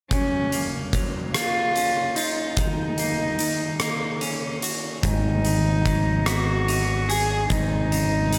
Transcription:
0.11 F#3 C#4, kick, closed hi-hat
0.52 A#3, closed hi-hat
0.93 F#3, kick, closed hi-hat
1.34 A#3 F4, cross-stick, closed hi-hat
1.76 C#4, closed hi-hat
2.15 D#4 F4, closed hi-hat
2.55 D#3 D#4, kick, closed hi-hat
2.98 A#3, closed hi-hat
3.39 D#3, closed hi-hat
3.80 A#3, cross-stick, closed hi-hat
4.21 C#4, closed hi-hat
4.62 F#4, closed hi-hat
5.03 G#1 G#2 D#4, kick, closed hi-hat
5.45 D#3, closed hi-hat
5.86 F#3, kick, closed hi-hat
6.26 B3 F#4, cross-stick, closed hi-hat
6.68 D#4, closed hi-hat
7.09 G#4, closed hi-hat
7.50 G#1 G#2 D#4, kick, closed hi-hat
7.92 C#3, closed hi-hat
8.33 G#3, closed hi-hat

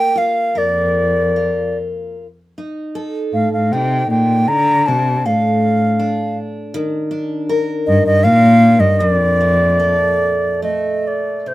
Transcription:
Already playing: A#3 F4 G5
0.16 F4 F5
0.55 F2 A#4 D5
1.36 F4
2.58 D#4
2.95 A4
3.32 A2 F5
3.53 A2 F5
3.72 C3 D#4 G5
4.09 A#2 G5
4.48 D3 A#5
4.86 C3 D4 A5
5.26 A2 A4 F5
5.99 D4
6.74 D#3
7.11 D4
7.49 A#4
7.86 G2 D#5
8.05 G2 D#5
8.24 A#2 D4 F5
8.79 G2 D#5
8.99 F#2 A#2 D#5
9.10 F2 D5
9.41 A3
9.80 A4
10.62 A3 D#5
11.07 D5
11.46 C3 C5

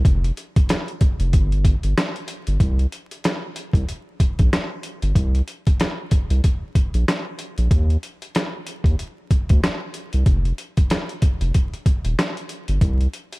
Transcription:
0.05 F1, kick, closed hi-hat
0.24 closed hi-hat
0.37 closed hi-hat
0.56 kick, closed hi-hat
0.69 cross-stick, snare, closed hi-hat
0.88 closed hi-hat
1.01 kick, closed hi-hat
1.20 F1, closed hi-hat
1.33 G1, kick, closed hi-hat
1.52 closed hi-hat
1.65 kick, closed hi-hat
1.83 G1, closed hi-hat
1.98 cross-stick, snare, closed hi-hat
2.16 closed hi-hat
2.28 closed hi-hat
2.47 G1, closed hi-hat
2.60 C2, kick, closed hi-hat
2.79 closed hi-hat
2.92 closed hi-hat
3.11 closed hi-hat
3.24 cross-stick, snare, closed hi-hat
3.56 closed hi-hat
3.73 C2, kick, closed hi-hat
3.89 closed hi-hat
4.20 kick, closed hi-hat
4.39 A#1, kick, closed hi-hat
4.53 cross-stick, snare, closed hi-hat
4.83 closed hi-hat
5.02 G1, closed hi-hat
5.15 C2, kick, closed hi-hat
5.35 closed hi-hat
5.48 closed hi-hat
5.67 kick, closed hi-hat
5.80 cross-stick, snare, closed hi-hat
6.11 kick, closed hi-hat
6.30 C2, closed hi-hat
6.44 kick, closed hi-hat
6.75 kick, closed hi-hat
6.94 A#1, closed hi-hat
7.08 cross-stick, snare, closed hi-hat
7.39 closed hi-hat
7.58 A#1, closed hi-hat
7.71 D#2, kick, closed hi-hat
7.90 closed hi-hat
8.03 closed hi-hat
8.22 closed hi-hat
8.35 cross-stick, snare, closed hi-hat
8.67 closed hi-hat
8.84 D#2, kick, closed hi-hat
8.99 closed hi-hat
9.31 kick, closed hi-hat
9.49 D2, kick, closed hi-hat
9.64 cross-stick, snare, closed hi-hat
9.94 closed hi-hat
10.13 C2, closed hi-hat
10.26 F1, kick, closed hi-hat
10.45 closed hi-hat
10.58 closed hi-hat
10.77 kick, closed hi-hat
10.90 cross-stick, snare, closed hi-hat
11.09 closed hi-hat
11.22 kick, closed hi-hat
11.41 F1, closed hi-hat
11.54 kick, closed hi-hat
11.74 closed hi-hat
11.86 kick, closed hi-hat
12.05 D#1, closed hi-hat
12.19 cross-stick, snare, closed hi-hat
12.37 closed hi-hat
12.49 closed hi-hat
12.68 G1, closed hi-hat
12.81 C2, kick, closed hi-hat
13.01 closed hi-hat
13.13 closed hi-hat
13.32 closed hi-hat

